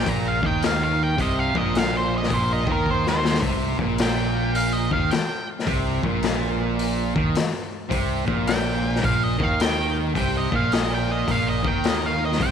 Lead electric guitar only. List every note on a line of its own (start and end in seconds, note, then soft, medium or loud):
0.08 0.26 A#5 medium
0.28 0.45 F5 medium
0.47 0.66 G5 medium
0.66 0.82 F5 medium
0.84 1.03 F5 medium
1.03 1.20 G5 medium
1.22 1.39 D#5 medium
1.39 1.56 F5 medium
1.58 1.78 D#5 medium
1.78 1.94 F5 medium
1.97 2.13 C5 medium
2.18 2.34 D#5 medium
2.34 2.53 C5 medium
2.53 2.69 D#5 medium
2.72 2.88 A#4 loud
2.91 3.07 C5 medium
3.09 3.37 C5 loud
4.02 4.55 G5 loud
4.56 4.73 F5 medium
4.73 4.91 D#5 medium
4.93 5.10 F5 medium
5.11 5.46 G5 medium
8.48 9.02 G5 loud
9.05 9.23 F5 loud
9.23 9.43 D#5 medium
9.43 9.61 F5 medium
9.61 9.96 G5 medium
10.18 10.34 G5 loud
10.37 10.54 D#5 medium
10.56 10.73 F5 loud
10.73 10.90 D#5 loud
10.94 11.10 G5 medium
11.12 11.31 D#5 medium
11.31 11.47 F5 medium
11.49 11.66 D#5 medium
11.68 11.84 G5 medium
11.87 12.06 D#5 medium
12.06 12.22 F5 medium
12.25 12.41 D#5 medium
12.42 12.51 G5 medium